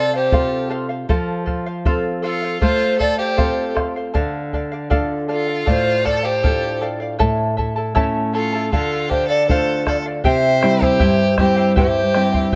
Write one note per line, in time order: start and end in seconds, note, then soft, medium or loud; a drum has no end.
0.00 1.05 C3 medium
0.00 0.13 A4 soft
0.00 0.14 A4 medium
0.00 0.13 C5 soft
0.00 0.13 D5 medium
0.00 0.12 F5 medium
0.13 0.69 G4 medium
0.13 0.68 C5 medium
0.13 0.32 C5 soft
0.13 0.32 F5 soft
0.31 1.06 C4 soft
0.31 1.07 F4 soft
0.31 1.07 A4 medium
0.31 0.68 A4 medium
0.31 0.69 C5 medium
0.31 0.70 F5 medium
0.31 bombo low medium
0.70 0.90 A4 medium
0.70 0.89 C5 medium
0.70 0.88 F5 medium
0.89 1.09 C5 medium
0.89 1.09 F5 medium
1.09 2.58 F3 medium
1.09 1.44 A4 medium
1.09 1.46 C5 medium
1.09 1.46 F5 medium
1.09 bombo low medium
1.46 1.66 A4 medium
1.46 1.66 C5 medium
1.46 1.65 F5 medium
1.46 bombo low soft
1.66 1.85 C5 medium
1.66 1.85 F5 medium
1.85 2.60 C4 soft
1.85 2.60 F4 soft
1.85 2.21 A4 medium
1.85 2.60 A4 medium
1.85 2.22 C5 medium
1.85 2.23 F5 loud
1.85 bombo low medium
2.22 2.60 F4 medium
2.22 2.42 A4 medium
2.22 2.60 A4 medium
2.22 2.42 C5 medium
2.22 2.41 F5 medium
2.42 2.61 C5 soft
2.42 2.61 F5 medium
2.61 4.11 A3 medium
2.61 2.98 F4 medium
2.61 2.98 A4 medium
2.61 2.97 C5 medium
2.61 2.98 C5 medium
2.61 2.99 F5 medium
2.61 bombo low medium
2.99 3.19 A4 medium
2.99 3.18 A4 medium
2.99 3.17 C5 medium
2.99 3.18 D5 medium
2.99 3.17 F5 medium
2.99 bombo low soft
3.18 3.72 G4 medium
3.18 3.72 C5 medium
3.18 3.36 C5 soft
3.18 3.37 F5 medium
3.37 4.13 C4 soft
3.37 4.13 F4 soft
3.37 3.73 A4 medium
3.37 4.13 A4 soft
3.37 3.74 C5 medium
3.37 3.75 F5 medium
3.37 bombo low medium
3.75 3.95 A4 medium
3.75 3.95 C5 medium
3.75 3.95 F5 medium
3.75 bombo rim soft
3.75 bombo low soft
3.96 4.16 C5 soft
3.96 4.13 F5 medium
4.14 5.64 D3 medium
4.14 4.52 A4 medium
4.14 4.53 D5 medium
4.14 4.53 F5 medium
4.14 bombo low medium
4.53 4.72 A4 medium
4.53 4.72 D5 medium
4.53 4.71 F5 medium
4.53 bombo low soft
4.72 4.89 D5 soft
4.72 4.90 F5 medium
4.90 5.65 D4 soft
4.90 5.65 F4 soft
4.90 5.27 A4 medium
4.90 5.66 A4 medium
4.90 5.28 D5 medium
4.90 5.28 F5 medium
4.90 bombo low medium
5.28 5.48 A4 medium
5.28 5.71 A4 medium
5.28 5.48 D5 medium
5.28 5.47 F5 medium
5.33 5.68 F4 medium
5.48 5.66 D5 soft
5.48 5.66 F5 soft
5.66 7.16 A2 medium
5.66 6.07 F4 medium
5.66 6.03 A4 medium
5.66 6.07 C5 medium
5.66 6.04 D5 medium
5.66 6.05 F5 medium
5.66 bombo low medium
6.04 6.24 A4 soft
6.04 6.26 A4 medium
6.04 6.23 D5 medium
6.04 6.26 D5 loud
6.04 6.22 F5 medium
6.04 bombo low soft
6.23 6.82 G4 medium
6.23 6.82 C5 medium
6.23 6.42 D5 soft
6.23 6.43 F5 medium
6.43 7.18 D4 soft
6.43 7.18 F4 soft
6.43 6.80 A4 medium
6.43 7.19 A4 medium
6.43 6.80 D5 medium
6.43 6.81 F5 medium
6.43 bombo low medium
6.81 7.01 A4 medium
6.81 7.00 D5 medium
6.81 6.99 F5 medium
7.00 7.19 D5 soft
7.00 7.19 F5 medium
7.19 8.69 A2 medium
7.19 7.57 E4 medium
7.19 7.57 A4 medium
7.19 7.58 C#5 medium
7.19 7.56 E5 medium
7.19 7.57 A5 medium
7.19 bombo low medium
7.57 7.76 E4 medium
7.57 7.76 A4 medium
7.57 7.77 E5 medium
7.57 7.75 A5 medium
7.57 bombo low soft
7.76 7.94 E4 medium
7.76 7.94 A4 soft
7.76 7.94 A5 medium
7.95 8.71 A3 medium
7.95 8.71 C#4 soft
7.95 8.33 E4 medium
7.95 8.34 A4 medium
7.95 8.34 C#5 medium
7.95 8.32 E5 medium
7.95 8.71 E5 medium
7.95 8.34 A5 loud
7.95 bombo low medium
8.34 8.53 E4 medium
8.34 8.70 F4 medium
8.34 8.70 A4 medium
8.34 8.52 A4 medium
8.34 8.53 E5 medium
8.34 8.52 A5 medium
8.53 8.72 E4 medium
8.53 8.71 A4 soft
8.53 8.72 A5 medium
8.72 10.21 D3 medium
8.72 9.11 F4 medium
8.72 9.11 A4 medium
8.72 9.09 A4 medium
8.72 9.09 D5 medium
8.72 9.10 F5 medium
8.72 bombo low medium
9.09 9.27 G4 medium
9.09 9.30 A4 medium
9.09 9.28 C5 medium
9.09 9.30 D5 soft
9.09 9.28 F5 medium
9.09 bombo low soft
9.28 9.46 A4 medium
9.28 9.47 D5 medium
9.28 9.48 D5 soft
9.28 9.49 F5 medium
9.48 10.23 A3 soft
9.48 10.23 D4 soft
9.48 10.23 F4 medium
9.48 9.84 A4 medium
9.48 9.86 A4 medium
9.48 9.84 C5 medium
9.48 9.87 D5 medium
9.48 9.87 F5 medium
9.48 bombo low medium
9.87 10.06 A4 medium
9.87 10.04 A4 medium
9.87 9.96 D5 medium
9.87 10.06 D5 medium
9.87 10.05 F5 medium
9.87 bombo rim soft
9.87 bombo low soft
10.06 10.25 D5 soft
10.06 10.24 F5 medium
10.24 10.99 C3 medium
10.24 10.60 E4 medium
10.24 10.63 G4 medium
10.24 10.61 C5 medium
10.24 10.84 C5 medium
10.24 10.83 E5 loud
10.24 10.60 E5 medium
10.24 10.61 G5 medium
10.24 bombo low medium
10.61 11.24 G3 soft
10.61 11.24 C4 soft
10.61 10.81 E4 soft
10.61 11.24 E4 medium
10.61 10.80 C5 medium
10.61 10.81 E5 medium
10.61 10.80 G5 medium
10.61 bombo rim soft
10.81 10.98 E4 soft
10.81 11.39 G4 medium
10.81 10.99 C5 soft
10.81 11.39 C5 medium
10.81 10.99 G5 medium
10.81 bombo low medium
10.99 11.75 G2 medium
10.99 11.37 E4 medium
10.99 11.38 G4 medium
10.99 11.37 C5 medium
10.99 11.36 E5 medium
10.99 11.38 G5 medium
10.99 bombo low medium
11.37 12.00 G3 medium
11.37 12.01 C4 soft
11.37 11.57 E4 medium
11.37 12.01 E4 medium
11.37 11.75 G4 medium
11.37 11.56 C5 medium
11.37 11.75 C5 medium
11.37 11.57 E5 medium
11.37 11.55 G5 medium
11.37 bombo rim medium
11.37 bombo low medium
11.56 11.76 E4 soft
11.56 11.76 C5 medium
11.56 11.76 G5 medium
11.76 12.51 G2 medium
11.76 12.14 E4 medium
11.76 12.15 G4 medium
11.76 12.49 G4 medium
11.76 12.14 C5 medium
11.76 12.25 C5 medium
11.76 12.13 E5 medium
11.76 12.15 G5 medium
11.76 bombo low medium
12.14 12.55 G3 medium
12.14 12.55 C4 soft
12.14 12.33 E4 medium
12.14 12.55 E4 medium
12.14 12.33 C5 medium
12.14 12.34 E5 medium
12.14 12.32 G5 medium
12.14 bombo rim soft
12.33 12.52 E4 soft
12.33 12.52 C5 soft
12.33 12.53 G5 medium
12.33 bombo low medium